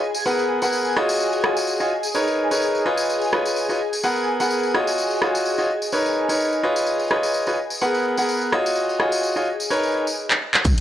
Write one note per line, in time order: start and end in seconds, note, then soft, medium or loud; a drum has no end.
0.00 10.18 G#4 medium
0.00 10.18 G#5 medium
0.14 tambourine medium
0.26 0.59 B3 medium
0.26 0.59 G#4 medium
0.26 0.59 A#4 medium
0.26 0.59 B4 medium
0.26 0.59 F#5 medium
0.26 tambourine medium
0.39 tambourine soft
0.62 0.94 B3 medium
0.62 0.94 G#4 medium
0.62 0.94 A#4 medium
0.62 0.94 B4 medium
0.62 0.94 F#5 medium
0.62 tambourine medium
0.73 tambourine medium
0.85 tambourine soft
0.97 1.41 F4 medium
0.97 1.41 F#4 medium
0.97 1.41 C#5 medium
0.97 1.41 D#5 loud
0.97 cross-stick medium
1.09 tambourine medium
1.20 tambourine medium
1.33 tambourine soft
1.44 1.77 F4 medium
1.44 1.77 F#4 medium
1.44 1.77 C#5 medium
1.44 1.77 D#5 medium
1.44 cross-stick medium
1.57 tambourine medium
1.67 tambourine medium
1.80 1.91 F4 medium
1.80 1.91 F#4 medium
1.80 1.91 C#5 medium
1.80 1.91 D#5 medium
1.80 tambourine soft
2.03 tambourine medium
2.15 2.48 D#4 medium
2.15 2.48 A#4 medium
2.15 2.48 B4 medium
2.15 2.48 C#5 medium
2.15 tambourine medium
2.27 tambourine soft
2.51 2.83 D#4 medium
2.51 2.83 A#4 medium
2.51 2.83 B4 medium
2.51 2.83 C#5 medium
2.51 tambourine medium
2.62 tambourine medium
2.75 tambourine soft
2.85 3.30 F4 medium
2.85 3.30 B4 medium
2.85 3.30 C#5 medium
2.85 3.30 D#5 loud
2.97 tambourine medium
3.10 tambourine medium
3.21 tambourine soft
3.33 3.66 F4 medium
3.33 3.66 B4 medium
3.33 3.66 C#5 medium
3.33 3.66 D#5 medium
3.33 cross-stick medium
3.45 tambourine medium
3.56 tambourine medium
3.69 3.79 F4 medium
3.69 3.79 B4 medium
3.69 3.79 C#5 medium
3.69 3.79 D#5 medium
3.69 tambourine soft
3.93 tambourine medium
4.03 4.37 B3 medium
4.03 4.37 G#4 medium
4.03 4.37 A#4 medium
4.03 4.37 B4 medium
4.03 4.37 F#5 medium
4.03 tambourine medium
4.16 tambourine soft
4.40 4.72 B3 medium
4.40 4.72 G#4 medium
4.40 4.72 A#4 medium
4.40 4.72 B4 medium
4.40 4.72 F#5 medium
4.40 tambourine medium
4.51 tambourine medium
4.63 tambourine soft
4.74 5.19 F4 medium
4.74 5.19 F#4 medium
4.74 5.19 C#5 medium
4.74 5.19 D#5 loud
4.74 cross-stick medium
4.87 tambourine medium
4.98 tambourine medium
5.10 tambourine soft
5.22 5.55 F4 medium
5.22 5.55 F#4 medium
5.22 5.55 C#5 medium
5.22 5.55 D#5 medium
5.22 cross-stick medium
5.35 tambourine medium
5.45 tambourine medium
5.58 5.69 F4 medium
5.58 5.69 F#4 medium
5.58 5.69 C#5 medium
5.58 5.69 D#5 medium
5.58 tambourine soft
5.82 tambourine medium
5.92 6.26 D#4 medium
5.92 6.26 A#4 medium
5.92 6.26 B4 medium
5.92 6.26 C#5 medium
5.92 tambourine medium
6.06 tambourine soft
6.29 6.61 D#4 medium
6.29 6.61 A#4 medium
6.29 6.61 B4 medium
6.29 6.61 C#5 medium
6.29 tambourine medium
6.40 tambourine medium
6.52 tambourine soft
6.63 7.08 F4 medium
6.63 7.08 B4 medium
6.63 7.08 C#5 medium
6.63 7.08 D#5 loud
6.76 tambourine medium
6.86 tambourine medium
6.99 tambourine soft
7.11 7.44 F4 medium
7.11 7.44 B4 medium
7.11 7.44 C#5 medium
7.11 7.44 D#5 medium
7.11 cross-stick medium
7.23 tambourine medium
7.34 tambourine medium
7.47 7.57 F4 medium
7.47 7.57 B4 medium
7.47 7.57 C#5 medium
7.47 7.57 D#5 medium
7.47 tambourine soft
7.70 tambourine medium
7.81 8.15 B3 medium
7.81 8.15 G#4 medium
7.81 8.15 A#4 medium
7.81 8.15 B4 medium
7.81 8.15 F#5 medium
7.81 tambourine medium
7.94 tambourine soft
8.17 8.50 B3 medium
8.17 8.50 G#4 medium
8.17 8.50 A#4 medium
8.17 8.50 B4 medium
8.17 8.50 F#5 medium
8.17 tambourine medium
8.29 tambourine medium
8.41 tambourine soft
8.52 8.97 F4 medium
8.52 8.97 F#4 medium
8.52 8.97 C#5 medium
8.52 8.97 D#5 loud
8.52 cross-stick medium
8.66 tambourine medium
8.75 tambourine medium
8.89 tambourine soft
9.00 9.33 F4 medium
9.00 9.33 F#4 medium
9.00 9.33 C#5 medium
9.00 9.33 D#5 medium
9.00 cross-stick medium
9.12 tambourine medium
9.23 tambourine medium
9.36 9.47 F4 medium
9.36 9.47 F#4 medium
9.36 9.47 C#5 medium
9.36 9.47 D#5 medium
9.36 tambourine soft
9.60 tambourine medium
9.70 10.04 D#4 medium
9.70 10.04 A#4 medium
9.70 10.04 B4 medium
9.70 10.04 C#5 loud
9.70 tambourine medium
9.83 tambourine soft
10.07 tambourine medium
10.31 clap medium
10.54 clap medium
10.64 10.74 C#2 loud
10.64 10.81 G#4 medium
10.64 10.81 F5 medium
10.64 kick loud
10.64 closed hi-hat medium
10.64 tambourine medium